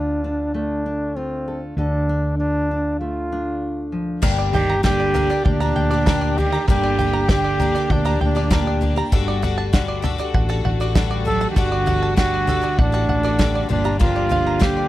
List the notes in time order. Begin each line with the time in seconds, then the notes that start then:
Already playing: D2 D3 D4 F4 A4
0.24 D4
0.54 A3 D4
0.86 D4
1.16 C4 F4
1.48 A4
1.77 D2 D3 D4 A4
2.09 D4
2.38 D4 F4
2.71 D4
3.00 A3 F4
3.32 D4
3.92 F3
4.22 G1 G2 D3 G3 A#3 D4 G4 A#4, kick, floor tom, crash
4.38 D5
4.53 D#3 G3 A#3 D4 G4 G5, floor tom
4.70 A#5
4.83 G2 D3 G3 A#3 D4 G4 G5, kick, snare, floor tom
5.00 D5
5.14 G3 A#3 D4 G4 A#4, floor tom
5.30 G3 A#3 D4 G4 D5
5.45 D2 A#2 D4 G5, kick, floor tom
5.60 G3 A#3 D4 G4 A#5
5.76 D2 G5, floor tom
5.91 G3 A#3 D4 G4 D5
6.06 G2 D3 G3 A#3 D4 G4 A#4, kick, snare, floor tom
6.21 D5
6.38 D#3 G3 A#3 D4 G4, floor tom
6.52 G3 A#3 D4 G4 A#5
6.68 G1 G2 D3 G3 A#3 D4 G4 A#4, kick, floor tom
6.83 D5
6.99 G3 A#3 D4 G4 G5, floor tom
7.13 A#5
7.29 G2 D3 G3 A#3 D4 G4 G5, kick, snare, floor tom
7.44 D5
7.60 G3 A#3 D4 G4 A#4, floor tom
7.75 G3 A#3 D4 G4 D5
7.90 D2 A#2 D4 G5, kick, floor tom
8.05 G3 A#3 D4 G4 A#5
8.21 D2 A#2 D4 G5, floor tom
8.35 G3 A#3 D4 G4 D5
8.50 G2 A#2 D3 G3 A#3 D4 G4 A#4, kick, snare, floor tom
8.67 D5
8.81 G3 A#3 D4 G4, floor tom
8.96 G3 A#3 D4 G4 A#5
9.12 G1 G2 D3 G3 A3 D4 F#4 A4, kick, floor tom
9.28 D5
9.42 G3 D4 F#4 A4 F#5, floor tom
9.58 A5
9.73 G2 D3 G3 D4 F#4 A4 F#5, kick, snare, floor tom
9.88 D5
10.02 G3 D4 F#4 A4, floor tom
10.18 G3 D4 F#4 A4 D5
10.34 A1 F#5, kick, floor tom
10.49 G3 D4 F#4 A4 A5
10.65 A1 F#5, floor tom
10.80 G3 D4 F#4 A4 D5
10.95 G2 D3 G3 D4 F#4 A4, kick, snare, floor tom
11.11 D5
11.25 F#3 G3 D4 F#4 A4, floor tom
11.41 G3 D4 F#4 A4 A5
11.50 D#3 G4
11.56 G1 G2 D3 G3 D4 F#4 A4, kick, floor tom
11.72 D5
11.86 G3 D4 F#4 A4 F#5, floor tom
12.03 A5
12.16 G2 D3 G3 D4 F#4 A4 F#5, kick, snare, floor tom
12.34 D5
12.47 G3 D4 F#4 A4, floor tom
12.62 G3 D4 F#4 A4 D5
12.78 A1 A2 D4 F#5, kick, floor tom
12.92 G3 D4 F#4 A4 A5
13.09 A1 F#5, floor tom
13.23 G3 D4 F#4 A4 D5
13.38 G2 D3 G3 D4 F#4 A4, kick, snare, floor tom
13.55 D5
13.69 G1 A#2 F3 A#3 D4 F4 G4, floor tom
13.84 F3 A#3 D4 G4 A#5
13.99 G2 D3 F3 A#3 D4 F4 G4 A#4, kick, floor tom
14.16 D5
14.29 F3 A#3 D4 G4 F5, floor tom
14.47 A#5
14.59 G2 D3 F3 A#3 D4 G4 F5, kick, snare, floor tom
14.77 D5